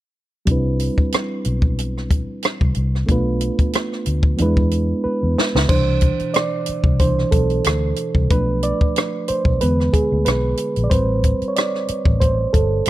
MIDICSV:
0, 0, Header, 1, 5, 480
1, 0, Start_track
1, 0, Key_signature, 0, "major"
1, 0, Tempo, 652174
1, 348, Time_signature, 4, 2, 24, 8
1, 9494, End_track
2, 0, Start_track
2, 0, Title_t, "Reed electric piano"
2, 0, Program_c, 0, 4
2, 335, Note_on_c, 0, 55, 63
2, 346, Note_on_c, 0, 60, 57
2, 359, Note_on_c, 0, 62, 58
2, 369, Note_on_c, 0, 64, 53
2, 378, Note_on_c, 0, 71, 71
2, 471, Control_c, 0, 64, 127
2, 2232, Note_off_c, 0, 55, 0
2, 2238, Note_off_c, 0, 60, 0
2, 2245, Note_off_c, 0, 62, 0
2, 2249, Note_off_c, 0, 64, 0
2, 2254, Note_off_c, 0, 71, 0
2, 2254, Note_on_c, 0, 57, 64
2, 2263, Note_on_c, 0, 59, 57
2, 2275, Note_on_c, 0, 62, 55
2, 2278, Control_c, 0, 64, 0
2, 2284, Note_on_c, 0, 65, 55
2, 2293, Note_on_c, 0, 71, 68
2, 2396, Control_c, 0, 64, 127
2, 3202, Note_off_c, 0, 57, 0
2, 3206, Note_off_c, 0, 59, 0
2, 3211, Note_on_c, 0, 53, 48
2, 3213, Note_off_c, 0, 62, 0
2, 3217, Note_off_c, 0, 65, 0
2, 3219, Note_on_c, 0, 59, 62
2, 3222, Note_off_c, 0, 71, 0
2, 3233, Note_on_c, 0, 62, 63
2, 3237, Control_c, 0, 64, 0
2, 3245, Note_on_c, 0, 64, 59
2, 3254, Note_on_c, 0, 71, 73
2, 3257, Note_on_c, 0, 56, 68
2, 3271, Note_off_c, 0, 53, 0
2, 3363, Control_c, 0, 64, 127
2, 3699, Note_off_c, 0, 71, 0
2, 3708, Note_on_c, 0, 71, 73
2, 4165, Note_off_c, 0, 59, 0
2, 4171, Note_off_c, 0, 62, 0
2, 4178, Note_off_c, 0, 64, 0
2, 4184, Note_off_c, 0, 56, 0
2, 4186, Note_on_c, 0, 72, 93
2, 4189, Note_on_c, 0, 52, 50
2, 4194, Note_on_c, 0, 47, 45
2, 4198, Control_c, 0, 64, 0
2, 4200, Note_on_c, 0, 62, 61
2, 4203, Note_off_c, 0, 71, 0
2, 4344, Control_c, 0, 64, 127
2, 4665, Note_on_c, 0, 74, 94
2, 4682, Note_off_c, 0, 72, 0
2, 4879, Note_off_c, 0, 52, 0
2, 4882, Note_off_c, 0, 47, 0
2, 4885, Note_off_c, 0, 62, 0
2, 5149, Note_on_c, 0, 72, 86
2, 5157, Note_on_c, 0, 52, 49
2, 5160, Note_on_c, 0, 47, 43
2, 5161, Note_off_c, 0, 74, 0
2, 5162, Note_on_c, 0, 62, 48
2, 5369, Note_off_c, 0, 52, 0
2, 5371, Note_off_c, 0, 47, 0
2, 5372, Note_off_c, 0, 62, 0
2, 5382, Note_on_c, 0, 69, 73
2, 5396, Note_off_c, 0, 72, 0
2, 5836, Note_off_c, 0, 69, 0
2, 6114, Note_on_c, 0, 53, 54
2, 6114, Note_on_c, 0, 71, 98
2, 6119, Control_c, 0, 64, 0
2, 6119, Note_on_c, 0, 57, 46
2, 6122, Note_on_c, 0, 62, 59
2, 6245, Control_c, 0, 64, 127
2, 6355, Note_on_c, 0, 74, 91
2, 6358, Note_off_c, 0, 71, 0
2, 6437, Note_off_c, 0, 53, 0
2, 6440, Note_off_c, 0, 57, 0
2, 6441, Note_off_c, 0, 62, 0
2, 6834, Note_on_c, 0, 72, 88
2, 6846, Note_off_c, 0, 74, 0
2, 7072, Note_on_c, 0, 71, 91
2, 7073, Note_on_c, 0, 50, 54
2, 7077, Control_c, 0, 64, 0
2, 7078, Note_off_c, 0, 72, 0
2, 7080, Note_on_c, 0, 56, 46
2, 7082, Note_on_c, 0, 59, 64
2, 7199, Control_c, 0, 64, 127
2, 7310, Note_on_c, 0, 68, 79
2, 7317, Note_off_c, 0, 71, 0
2, 7397, Note_off_c, 0, 50, 0
2, 7400, Note_off_c, 0, 56, 0
2, 7401, Note_off_c, 0, 59, 0
2, 7418, Note_off_c, 0, 68, 0
2, 7546, Note_on_c, 0, 71, 86
2, 7977, Note_on_c, 0, 74, 60
2, 7993, Note_off_c, 0, 71, 0
2, 8021, Note_on_c, 0, 72, 94
2, 8026, Note_off_c, 0, 74, 0
2, 8027, Note_on_c, 0, 60, 54
2, 8031, Note_on_c, 0, 55, 47
2, 8033, Note_on_c, 0, 71, 58
2, 8037, Control_c, 0, 64, 0
2, 8154, Control_c, 0, 64, 127
2, 8450, Note_on_c, 0, 73, 65
2, 8470, Note_off_c, 0, 72, 0
2, 8503, Note_off_c, 0, 73, 0
2, 8508, Note_on_c, 0, 74, 81
2, 8982, Note_on_c, 0, 72, 85
2, 9003, Note_off_c, 0, 74, 0
2, 9222, Note_on_c, 0, 69, 73
2, 9233, Note_off_c, 0, 72, 0
2, 9494, Note_off_c, 0, 55, 0
2, 9494, Note_off_c, 0, 60, 0
2, 9494, Note_off_c, 0, 69, 0
2, 9494, Note_off_c, 0, 71, 0
2, 9494, End_track
3, 0, Start_track
3, 0, Title_t, "Fingered electric bass"
3, 0, Program_c, 1, 33
3, 352, Note_on_c, 1, 36, 81
3, 649, Note_off_c, 1, 36, 0
3, 1074, Note_on_c, 1, 35, 69
3, 1651, Note_off_c, 1, 35, 0
3, 1927, Note_on_c, 1, 36, 63
3, 2013, Note_off_c, 1, 36, 0
3, 2036, Note_on_c, 1, 36, 67
3, 2227, Note_off_c, 1, 36, 0
3, 2276, Note_on_c, 1, 35, 83
3, 2571, Note_off_c, 1, 35, 0
3, 2995, Note_on_c, 1, 38, 70
3, 3187, Note_off_c, 1, 38, 0
3, 3237, Note_on_c, 1, 40, 82
3, 3622, Note_off_c, 1, 40, 0
3, 3850, Note_on_c, 1, 40, 70
3, 3935, Note_off_c, 1, 40, 0
3, 4084, Note_on_c, 1, 37, 70
3, 4172, Note_off_c, 1, 37, 0
3, 4194, Note_on_c, 1, 36, 88
3, 4490, Note_off_c, 1, 36, 0
3, 5038, Note_on_c, 1, 36, 82
3, 5322, Note_off_c, 1, 36, 0
3, 5395, Note_on_c, 1, 35, 79
3, 5586, Note_off_c, 1, 35, 0
3, 5637, Note_on_c, 1, 38, 81
3, 5828, Note_off_c, 1, 38, 0
3, 6001, Note_on_c, 1, 36, 68
3, 6089, Note_off_c, 1, 36, 0
3, 6118, Note_on_c, 1, 35, 89
3, 6413, Note_off_c, 1, 35, 0
3, 6959, Note_on_c, 1, 35, 77
3, 7048, Note_off_c, 1, 35, 0
3, 7083, Note_on_c, 1, 40, 87
3, 7271, Note_off_c, 1, 40, 0
3, 7450, Note_on_c, 1, 38, 78
3, 7535, Note_off_c, 1, 38, 0
3, 7558, Note_on_c, 1, 35, 83
3, 7748, Note_off_c, 1, 35, 0
3, 7927, Note_on_c, 1, 34, 70
3, 8013, Note_off_c, 1, 34, 0
3, 8038, Note_on_c, 1, 33, 91
3, 8332, Note_off_c, 1, 33, 0
3, 8877, Note_on_c, 1, 33, 79
3, 9161, Note_off_c, 1, 33, 0
3, 9234, Note_on_c, 1, 31, 69
3, 9426, Note_off_c, 1, 31, 0
3, 9494, End_track
4, 0, Start_track
4, 0, Title_t, "Muted fingered electric bass strokes"
4, 725, Note_on_c, 9, 29, 35
4, 798, Note_off_c, 9, 29, 0
4, 2647, Note_on_c, 9, 29, 37
4, 2721, Note_off_c, 9, 29, 0
4, 3719, Note_on_c, 9, 29, 38
4, 3793, Note_off_c, 9, 29, 0
4, 4567, Note_on_c, 9, 29, 40
4, 4641, Note_off_c, 9, 29, 0
4, 4924, Note_on_c, 9, 29, 41
4, 4998, Note_off_c, 9, 29, 0
4, 6491, Note_on_c, 9, 29, 38
4, 6564, Note_off_c, 9, 29, 0
4, 6843, Note_on_c, 9, 29, 40
4, 6917, Note_off_c, 9, 29, 0
4, 7319, Note_on_c, 9, 29, 40
4, 7392, Note_off_c, 9, 29, 0
4, 8405, Note_on_c, 9, 29, 41
4, 8478, Note_off_c, 9, 29, 0
4, 8755, Note_on_c, 9, 29, 40
4, 8828, Note_off_c, 9, 29, 0
4, 9494, End_track
5, 0, Start_track
5, 0, Title_t, "Drums"
5, 343, Note_on_c, 9, 42, 68
5, 347, Note_on_c, 9, 36, 88
5, 417, Note_off_c, 9, 42, 0
5, 421, Note_off_c, 9, 36, 0
5, 585, Note_on_c, 9, 42, 53
5, 659, Note_off_c, 9, 42, 0
5, 720, Note_on_c, 9, 36, 69
5, 793, Note_off_c, 9, 36, 0
5, 827, Note_on_c, 9, 42, 66
5, 843, Note_on_c, 9, 37, 102
5, 901, Note_off_c, 9, 42, 0
5, 917, Note_off_c, 9, 37, 0
5, 1064, Note_on_c, 9, 42, 53
5, 1137, Note_off_c, 9, 42, 0
5, 1192, Note_on_c, 9, 36, 80
5, 1266, Note_off_c, 9, 36, 0
5, 1314, Note_on_c, 9, 42, 68
5, 1387, Note_off_c, 9, 42, 0
5, 1454, Note_on_c, 9, 37, 26
5, 1528, Note_off_c, 9, 37, 0
5, 1550, Note_on_c, 9, 36, 78
5, 1550, Note_on_c, 9, 42, 54
5, 1623, Note_off_c, 9, 36, 0
5, 1624, Note_off_c, 9, 42, 0
5, 1785, Note_on_c, 9, 42, 68
5, 1804, Note_on_c, 9, 37, 91
5, 1858, Note_off_c, 9, 42, 0
5, 1877, Note_off_c, 9, 37, 0
5, 1921, Note_on_c, 9, 36, 75
5, 1994, Note_off_c, 9, 36, 0
5, 2020, Note_on_c, 9, 42, 47
5, 2094, Note_off_c, 9, 42, 0
5, 2173, Note_on_c, 9, 37, 27
5, 2246, Note_off_c, 9, 37, 0
5, 2271, Note_on_c, 9, 36, 82
5, 2273, Note_on_c, 9, 42, 61
5, 2345, Note_off_c, 9, 36, 0
5, 2346, Note_off_c, 9, 42, 0
5, 2507, Note_on_c, 9, 42, 60
5, 2580, Note_off_c, 9, 42, 0
5, 2641, Note_on_c, 9, 36, 75
5, 2643, Note_on_c, 9, 42, 30
5, 2715, Note_off_c, 9, 36, 0
5, 2716, Note_off_c, 9, 42, 0
5, 2748, Note_on_c, 9, 42, 73
5, 2764, Note_on_c, 9, 37, 103
5, 2821, Note_off_c, 9, 42, 0
5, 2837, Note_off_c, 9, 37, 0
5, 2890, Note_on_c, 9, 37, 31
5, 2964, Note_off_c, 9, 37, 0
5, 2986, Note_on_c, 9, 42, 66
5, 3059, Note_off_c, 9, 42, 0
5, 3112, Note_on_c, 9, 36, 80
5, 3186, Note_off_c, 9, 36, 0
5, 3226, Note_on_c, 9, 42, 69
5, 3299, Note_off_c, 9, 42, 0
5, 3363, Note_on_c, 9, 36, 81
5, 3436, Note_off_c, 9, 36, 0
5, 3469, Note_on_c, 9, 42, 53
5, 3543, Note_off_c, 9, 42, 0
5, 3963, Note_on_c, 9, 38, 62
5, 4037, Note_off_c, 9, 38, 0
5, 4090, Note_on_c, 9, 38, 63
5, 4163, Note_off_c, 9, 38, 0
5, 4187, Note_on_c, 9, 49, 71
5, 4189, Note_on_c, 9, 36, 100
5, 4261, Note_off_c, 9, 49, 0
5, 4263, Note_off_c, 9, 36, 0
5, 4422, Note_on_c, 9, 42, 58
5, 4431, Note_on_c, 9, 36, 68
5, 4495, Note_off_c, 9, 42, 0
5, 4504, Note_off_c, 9, 36, 0
5, 4559, Note_on_c, 9, 42, 30
5, 4633, Note_off_c, 9, 42, 0
5, 4666, Note_on_c, 9, 42, 72
5, 4682, Note_on_c, 9, 37, 115
5, 4740, Note_off_c, 9, 42, 0
5, 4756, Note_off_c, 9, 37, 0
5, 4901, Note_on_c, 9, 42, 62
5, 4974, Note_off_c, 9, 42, 0
5, 5032, Note_on_c, 9, 36, 83
5, 5105, Note_off_c, 9, 36, 0
5, 5147, Note_on_c, 9, 42, 66
5, 5151, Note_on_c, 9, 36, 75
5, 5221, Note_off_c, 9, 42, 0
5, 5224, Note_off_c, 9, 36, 0
5, 5290, Note_on_c, 9, 37, 29
5, 5364, Note_off_c, 9, 37, 0
5, 5388, Note_on_c, 9, 42, 58
5, 5390, Note_on_c, 9, 36, 82
5, 5461, Note_off_c, 9, 42, 0
5, 5464, Note_off_c, 9, 36, 0
5, 5518, Note_on_c, 9, 42, 29
5, 5592, Note_off_c, 9, 42, 0
5, 5625, Note_on_c, 9, 42, 80
5, 5645, Note_on_c, 9, 37, 99
5, 5699, Note_off_c, 9, 42, 0
5, 5718, Note_off_c, 9, 37, 0
5, 5860, Note_on_c, 9, 42, 54
5, 5934, Note_off_c, 9, 42, 0
5, 5996, Note_on_c, 9, 36, 66
5, 6069, Note_off_c, 9, 36, 0
5, 6110, Note_on_c, 9, 42, 71
5, 6113, Note_on_c, 9, 36, 105
5, 6184, Note_off_c, 9, 42, 0
5, 6186, Note_off_c, 9, 36, 0
5, 6348, Note_on_c, 9, 42, 60
5, 6422, Note_off_c, 9, 42, 0
5, 6484, Note_on_c, 9, 36, 77
5, 6558, Note_off_c, 9, 36, 0
5, 6594, Note_on_c, 9, 42, 83
5, 6610, Note_on_c, 9, 37, 115
5, 6668, Note_off_c, 9, 42, 0
5, 6684, Note_off_c, 9, 37, 0
5, 6829, Note_on_c, 9, 42, 66
5, 6902, Note_off_c, 9, 42, 0
5, 6956, Note_on_c, 9, 36, 79
5, 7029, Note_off_c, 9, 36, 0
5, 7072, Note_on_c, 9, 42, 74
5, 7145, Note_off_c, 9, 42, 0
5, 7214, Note_on_c, 9, 37, 29
5, 7288, Note_off_c, 9, 37, 0
5, 7313, Note_on_c, 9, 36, 87
5, 7317, Note_on_c, 9, 42, 60
5, 7387, Note_off_c, 9, 36, 0
5, 7390, Note_off_c, 9, 42, 0
5, 7549, Note_on_c, 9, 42, 78
5, 7568, Note_on_c, 9, 37, 95
5, 7623, Note_off_c, 9, 42, 0
5, 7642, Note_off_c, 9, 37, 0
5, 7782, Note_on_c, 9, 42, 58
5, 7856, Note_off_c, 9, 42, 0
5, 7920, Note_on_c, 9, 42, 33
5, 7993, Note_off_c, 9, 42, 0
5, 8032, Note_on_c, 9, 36, 102
5, 8033, Note_on_c, 9, 42, 76
5, 8105, Note_off_c, 9, 36, 0
5, 8107, Note_off_c, 9, 42, 0
5, 8269, Note_on_c, 9, 42, 61
5, 8273, Note_on_c, 9, 36, 70
5, 8343, Note_off_c, 9, 42, 0
5, 8346, Note_off_c, 9, 36, 0
5, 8402, Note_on_c, 9, 42, 28
5, 8476, Note_off_c, 9, 42, 0
5, 8510, Note_on_c, 9, 42, 83
5, 8526, Note_on_c, 9, 37, 104
5, 8584, Note_off_c, 9, 42, 0
5, 8599, Note_off_c, 9, 37, 0
5, 8648, Note_on_c, 9, 37, 35
5, 8722, Note_off_c, 9, 37, 0
5, 8746, Note_on_c, 9, 42, 61
5, 8820, Note_off_c, 9, 42, 0
5, 8872, Note_on_c, 9, 36, 88
5, 8946, Note_off_c, 9, 36, 0
5, 8991, Note_on_c, 9, 36, 71
5, 8991, Note_on_c, 9, 42, 69
5, 9064, Note_off_c, 9, 36, 0
5, 9064, Note_off_c, 9, 42, 0
5, 9230, Note_on_c, 9, 36, 80
5, 9231, Note_on_c, 9, 42, 59
5, 9303, Note_off_c, 9, 36, 0
5, 9305, Note_off_c, 9, 42, 0
5, 9461, Note_on_c, 9, 42, 74
5, 9494, Note_off_c, 9, 42, 0
5, 9494, End_track
0, 0, End_of_file